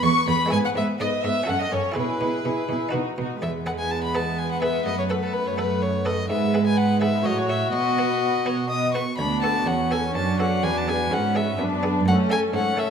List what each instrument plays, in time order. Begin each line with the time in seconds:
Already playing: harpsichord B3 E4 G#4
0.03 cello section E2, harpsichord E2, viola section B3, violin section B4 C#6, violin C#6
0.27 cello section E2, harpsichord E2, viola section B3, violin section B4 B5, violin B5
0.46 harpsichord G#3 B3 E4
0.50 cello section G#2, harpsichord G#2 G#4, viola section B3, violin section B4 G#5, violin G#5
0.65 violin section F#5, violin F#5
0.75 harpsichord G#2, cello section G#2, viola section B3, violin section B4 E5, violin E5
0.99 harpsichord G#2, cello section G#2, viola section B3, violin section B4 D#5, violin D#5
1.23 cello section G#2, harpsichord G#2, viola section B3, violin section B4 E5, violin E5
1.44 harpsichord C#4 F#4 A4, viola section C#4
1.48 harpsichord F#2, cello section F#2, violin section A4 F#5, violin F#5
1.60 violin section D#5, violin D#5
1.72 harpsichord F#2, cello section F#2, viola section C#4, violin section A4 C#5, violin C#5
1.92 harpsichord E4 G#4 B4
1.96 harpsichord B2, cello section B2, viola section E4, violin section G#4 B4, violin B4
2.21 cello section B2, harpsichord B2, viola section E4, violin section G#4
2.45 cello section B2, harpsichord B2, viola section E4, violin section G#4
2.69 harpsichord B2, cello section B2, viola section E4, violin section G#4
2.89 harpsichord D#4 F#4 B4, violin section F#4
2.93 cello section B2, harpsichord B2, viola section D#4
3.18 cello section B2, harpsichord B2, viola section D#4, violin section F#4
3.42 cello section E2, harpsichord E2, viola section G#3, violin section B3 B4, violin E5
3.66 harpsichord B3 G#4 B4, violin F#5
3.79 violin G#5
3.91 violin A5
4.04 violin B5
4.15 harpsichord B3 G#4 B4, violin A5
4.38 violin G#5
4.51 violin F#5
4.62 harpsichord B3 G#4 B4, violin E5
4.85 cello section F#2, harpsichord F#2, viola section A3, violin D#5
4.99 violin C#5
5.09 harpsichord B3 A4 B4, violin B4
5.23 violin A4
5.33 violin B4
5.47 violin C#5
5.58 harpsichord B3 A4 B4, violin B4
5.82 violin C#5
6.05 harpsichord B3 A4 B4, violin D#5
6.29 cello section G#2, harpsichord G#2, viola section G#3, violin section B3 B4, violin E5
6.54 harpsichord B3 G#4 B4
6.67 violin G#5
6.77 violin F#5
7.01 harpsichord B3 G#4 B4, violin E5
7.24 harpsichord A2, cello section A2, viola section F#3, violin section F#4 C#5, violin D#5
7.38 violin C#5
7.49 harpsichord F#4 C#5, violin E5
7.72 harpsichord B2, cello section B2, viola section B3, violin section B4, violin D#5
7.98 harpsichord B3 F#4 B4
8.21 violin section B4
8.45 harpsichord B3 F#4 B4, violin section C#5
8.69 violin section D#5, violin D#6
8.94 harpsichord B3 F#4 B4, violin section B4, violin C#6
9.18 cello section D2, harpsichord D2, viola section B3, violin section D4 F#4, violin B5
9.42 harpsichord B3 F#4 A4, violin A5
9.66 harpsichord E2, cello section E2, violin section C#4, violin F#5
9.91 harpsichord B3 F#4 A4, violin G#5
10.13 cello section F#2, harpsichord F#2, viola section D4, violin section F#4, violin A5
10.39 harpsichord B3 F#4 A4, violin F#5
10.63 cello section E2, harpsichord E2, violin section B3, violin G#5
10.77 violin A5
10.88 harpsichord B3 D4 G#4, violin G#5
11.10 cello section G#2, harpsichord G#2, viola section C#4, violin F#5
11.35 harpsichord B3 D4 G#4, violin E5
11.57 cello section F#2, harpsichord F#2, viola section B3, violin section D4 B4
11.83 harpsichord B3 D4 G#4
12.05 cello section F#2, harpsichord F#2, viola section A3, violin section C#4 A4, violin F#5
12.30 harpsichord A3 C#4 A4, violin G#5
12.53 cello section G#2, harpsichord G#2, viola section A3, violin section C#4 A4, violin F#5
12.77 harpsichord A3 C#4 A4, violin E5